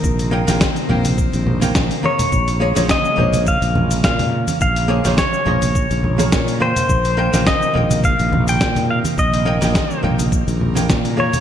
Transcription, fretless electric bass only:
X:1
M:4/4
L:1/16
Q:"Swing 16ths" 1/4=105
K:Cphr
V:1 name="Fretless electric bass" clef=bass
B,,,3 B,,, z2 B,,,3 B,,,3 B,,, z3 | B,,,3 B,,, z2 B,,,3 B,,,3 B,,3 z | B,,,3 B,,, z2 B,,,3 B,,,3 B,,3 z | B,,,3 B,,, z2 B,,,3 B,,,3 B,,3 z |
B,,,3 B,,, z2 B,,,3 B,,,3 B,,3 z |]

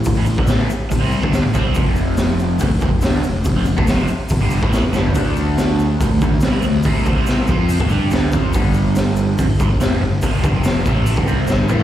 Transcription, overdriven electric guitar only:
X:1
M:4/4
L:1/16
Q:1/4=142
K:Flyd
V:1 name="Overdriven electric guitar" clef=bass
[A,,E,] [A,,E,] [A,,E,] [G,,D,] [A,,E,A,]2 z2 [A,,E,] [C,G,C]2 [D,A,D]2 [A,,E,] [C,G,C]2 | [F,,C,F,]8 [D,A,] [F,,C,] [F,,C,] [F,,C,] [D,A,D]2 [F,,C,]2 | [F,,C,] [F,,C,] [F,,C,] [D,A,] [F,,C,F,]2 z2 [F,,C,] [G,,D,G,]2 [A,,E,A,]2 [F,,C,] [G,,D,G,]2 | [D,A,D]8 [C,G,] [D,A,] [D,A,] [D,A,] [C,G,C]2 [D,A,]2 |
[C,G,C]2 [D,A,] [C,G,C]3 [F,CF]3 [D,A,] [G,DG]2 [D,A,D]2 [F,CF]2 | [G,,D,G,]8 [F,,C,] [G,,D,] [G,,D,] [G,,D,] [F,,C,F,]2 [G,,D,]2 | [F,,C,F,]2 [G,,D,] [F,,C,F,]3 [A,,E,A,]3 [G,,D,] [C,G,C]2 [G,,D,G,]2 [A,,E,A,]2 |]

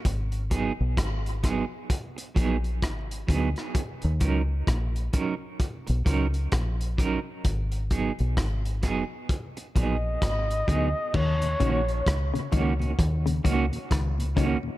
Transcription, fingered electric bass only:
X:1
M:4/4
L:1/16
Q:"Swing 16ths" 1/4=65
K:Ebm
V:1 name="Fingered electric bass" clef=bass
A,,,3 C,, A,,,3 z3 B,,,2 A,,,2 =D,, z | z E,, D,,2 B,,,2 z3 C,, D,,2 B,,,3 z | A,,,3 C,, A,,,3 z3 B,,,2 A,,,2 =D,, z | E,,2 B,,,2 D,, z D,,2 E,,2 D,, z D,,3 z |]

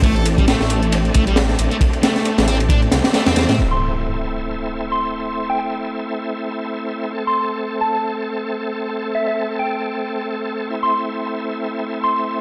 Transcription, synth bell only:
X:1
M:4/4
L:1/16
Q:"Swing 16ths" 1/4=135
K:Am
V:1 name="Synth bell"
z16 | z16 | z c' z8 z2 c'4 | z g g z12 z |
z c' z4 a a z8 | z2 e e z2 g6 z4 | z c' z8 z2 c'4 |]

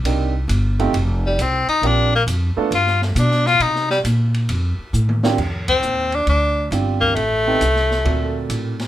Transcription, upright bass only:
X:1
M:4/4
L:1/8
Q:"Swing" 1/4=135
K:Eblyd
V:1 name="Upright bass" clef=bass
C,,2 G,,,2 F,,,2 C,, z | B,,,2 F,, z G,,2 =B,,2 | C,2 B,,2 F,, z A,,2 | F,,2 E,,2 D,,2 G,,,2 |
A,,,2 C,,2 D,,2 A,,2 |]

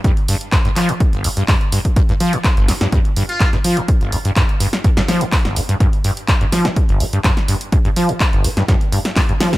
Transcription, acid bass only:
X:1
M:4/4
L:1/16
Q:1/4=125
K:Cdor
V:1 name="Acid bass" clef=bass
G,, z G,, z G,, G,, F, G,, z G,,, C, G,, G,, z G,, z | G,, G,, F, G,, z G,,, C, G,, G,, z G,, z G,, G,, F, G,, | z G,,, C, G,, G,, z G,, z G,, G,, F, G,, z G,,, C, G,, | G,, z G,, z G,, G,, F, G,, z G,,, C, G,, G,, z G,, z |
G,, G,, F, G,, z G,,, C, G,, G,, z G,, z G,, G,, F, G,, |]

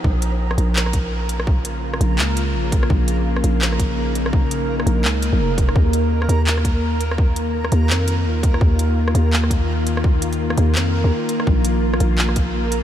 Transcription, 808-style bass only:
X:1
M:4/4
L:1/16
Q:"Swing 16ths" 1/4=168
K:Bbm
V:1 name="808-style bass" clef=bass
B,,,6 B,,,8- B,,,2- | B,,,6 B,,,2 D,,4 B,,,4 | B,,,6 B,,,8- B,,,2- | B,,,6 B,,,2 D,,3 B,,, F,,,4 |
E,,6 E,,8- E,,2- | E,,6 E,,2 F,,4 E,,4 | E,,6 E,,8- E,,2- | E,,6 E,,2 F,,3 E,, z4 |
B,,,6 B,,,8- B,,,2 |]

